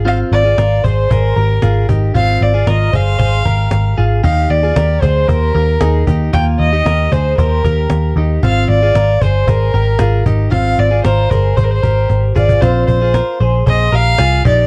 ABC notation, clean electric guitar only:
X:1
M:4/4
L:1/16
Q:1/4=115
K:Ablyd
V:1 name="Clean electric guitar"
[CF]3 [FA] [FB]2 [Ac]2 [Ac]2 [GB]2 [FA]2 [EG]2 | [CF]3 [FA] [FB]2 [Ac]2 [Ac]2 [GB]4 [FA]2 | [EG]3 [FA] [GB]2 [Ac]2 [Gc]2 [GB]2 [EA]2 [EG]2 | [B,F]3 [EG] [GB]2 [Ac]2 [Gc]2 [GB]4 [EG]2 |
[CF]3 [FA] [FB]2 [Ac]2 [Ac]2 [GB]2 [FA]2 [EG]2 | [CF]3 [FA] [FB]2 [Ac]2 [Ac]2 [GB]4 [FA]2 | [CF]3 [FA] [FB]2 [Ac]2 [Ac]2 [GB]2 [FA]2 [EG]2 |]